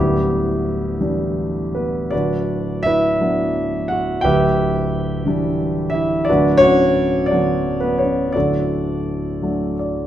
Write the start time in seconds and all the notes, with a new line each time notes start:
Already playing: D1 D2 G3 B3 E4 G4
1.01 E3 G3 D4
1.75 B3 B4
2.10 D1 D2 D4 F#4 B4 D5
2.83 E4 B4 E5
3.21 F#3 B3 D4
3.88 F#4 F#5
4.21 D1 D2 G4 B4 E5 G5
5.26 E3 G3 D4
5.90 E5
5.94 E4
6.25 D5
6.29 D1 D2 D4 F#4 B4
6.57 C#5
6.62 C#4 F#4
7.26 D5
7.31 D3 F#3 B3 D4 F#4
7.80 B3 B4
7.98 C#5
8.03 C#4
8.32 D1 D2 D4 F#4 A4 D5
9.42 F#3 A3 D4
9.79 D5